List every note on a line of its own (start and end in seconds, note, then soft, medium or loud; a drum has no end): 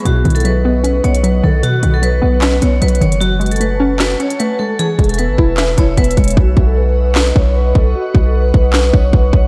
0.05 0.24 B1 loud
0.05 1.04 B2 medium
0.05 0.34 F#4 medium
0.05 3.18 B4 medium
0.05 3.18 D#5 medium
0.05 3.18 F#5 medium
0.05 4.75 C#6 medium
0.05 closed hi-hat medium
0.25 1.01 B1 loud
0.25 1.24 D#3 medium
0.25 closed hi-hat soft
0.30 closed hi-hat soft
0.35 0.43 A4 medium
0.35 closed hi-hat medium
0.40 closed hi-hat medium
0.45 1.22 F#3 medium
0.45 0.82 B4 medium
0.45 closed hi-hat medium
0.65 1.03 B3 medium
0.84 1.83 C#4 medium
0.84 1.01 B4 medium
0.84 closed hi-hat medium
1.04 1.42 B1 loud
1.04 2.03 B3 medium
1.04 1.21 C#5 medium
1.04 closed hi-hat soft
1.15 closed hi-hat medium
1.24 2.01 F#3 medium
1.24 1.40 B4 medium
1.24 closed hi-hat medium
1.43 1.62 B1 loud
1.43 1.82 D#3 medium
1.43 1.60 A4 medium
1.63 2.62 B2 medium
1.63 1.92 F#4 loud
1.63 closed hi-hat medium
1.83 2.21 B1 loud
1.83 2.82 D#3 medium
1.83 closed hi-hat medium
1.94 2.01 A4 medium
2.02 2.80 F#3 medium
2.02 2.40 B4 medium
2.02 closed hi-hat medium
2.22 2.60 B1 loud
2.22 2.61 B3 medium
2.41 3.21 C#4 medium
2.41 2.59 B4 medium
2.41 snare loud
2.41 clap medium
2.41 closed hi-hat medium
2.62 2.81 B1 loud
2.62 3.22 B3 medium
2.62 2.79 C#5 medium
2.62 closed hi-hat medium
2.81 3.01 B1 loud
2.81 3.20 F#3 medium
2.81 2.98 B4 medium
2.81 closed hi-hat medium
2.88 closed hi-hat medium
2.95 closed hi-hat medium
3.01 4.16 F#1 loud
3.01 3.21 D#3 medium
3.01 3.18 C#5 medium
3.01 closed hi-hat soft
3.12 closed hi-hat medium
3.21 4.20 F#3 medium
3.21 3.49 F#4 medium
3.21 4.78 F#5 medium
3.21 6.34 G#5 medium
3.21 4.78 A5 medium
3.21 closed hi-hat medium
3.40 4.39 G#3 medium
3.40 closed hi-hat soft
3.46 closed hi-hat soft
3.51 3.59 A4 medium
3.51 closed hi-hat medium
3.56 closed hi-hat medium
3.60 4.39 A3 medium
3.60 3.98 B4 medium
3.60 closed hi-hat medium
3.80 4.19 C#4 loud
3.99 4.79 F#4 medium
3.99 4.17 B4 medium
3.99 snare loud
3.99 clap loud
3.99 closed hi-hat medium
4.20 4.79 C#4 medium
4.20 4.37 C#5 medium
4.20 closed hi-hat soft
4.30 closed hi-hat medium
4.39 4.79 A3 medium
4.39 4.56 B4 medium
4.39 closed hi-hat medium
4.59 4.79 G#3 medium
4.59 4.76 A4 medium
4.79 5.78 E3 medium
4.79 5.08 G#4 loud
4.79 6.36 B4 medium
4.79 6.36 E5 medium
4.79 6.36 E6 medium
4.79 closed hi-hat medium
4.99 5.31 E1 loud
4.99 5.98 G#3 medium
4.99 kick medium
4.99 closed hi-hat soft
5.04 closed hi-hat soft
5.09 5.17 A4 medium
5.09 closed hi-hat medium
5.14 closed hi-hat medium
5.18 5.96 B3 medium
5.18 5.55 B4 medium
5.18 closed hi-hat medium
5.29 5.38 G#1 loud
5.38 5.76 E1 loud
5.38 5.78 E4 medium
5.38 kick medium
5.57 5.74 B4 medium
5.57 6.37 E5 medium
5.57 snare loud
5.57 clap loud
5.57 closed hi-hat medium
5.78 5.97 E1 loud
5.78 6.38 E4 medium
5.78 5.94 C#5 medium
5.78 kick medium
5.78 closed hi-hat medium
5.97 6.16 E1 loud
5.97 6.37 B3 medium
5.97 6.14 B4 medium
5.97 kick medium
5.97 closed hi-hat medium
6.04 closed hi-hat medium
6.11 closed hi-hat medium
6.17 6.36 E1 loud
6.17 6.37 G#3 medium
6.17 6.34 C#5 medium
6.17 kick loud
6.17 closed hi-hat medium
6.24 closed hi-hat medium
6.28 closed hi-hat medium
6.30 closed hi-hat medium
6.37 6.56 B1 loud
6.37 6.65 F#4 loud
6.37 9.47 B4 medium
6.37 9.47 D#5 medium
6.37 9.47 F#5 medium
6.37 9.47 C#6 medium
6.37 kick loud
6.57 7.33 B1 loud
6.57 kick medium
6.67 6.75 A4 medium
6.77 7.14 B4 medium
7.15 7.32 B4 medium
7.15 snare loud
7.15 clap loud
7.36 7.74 B1 loud
7.36 7.52 C#5 medium
7.36 kick medium
7.56 7.72 B4 medium
7.75 7.94 B1 loud
7.75 7.92 A4 medium
7.75 kick loud
7.95 8.24 F#4 loud
8.15 8.52 B1 loud
8.15 kick medium
8.26 8.33 A4 medium
8.35 8.72 B4 medium
8.54 8.92 B1 loud
8.54 kick medium
8.73 8.90 B4 medium
8.73 snare loud
8.73 clap loud
8.94 9.12 B1 loud
8.94 9.10 C#5 medium
8.94 kick medium
9.13 9.32 B1 loud
9.13 9.30 B4 medium
9.13 kick medium
9.33 9.47 B1 loud
9.33 9.47 C#5 medium
9.33 kick medium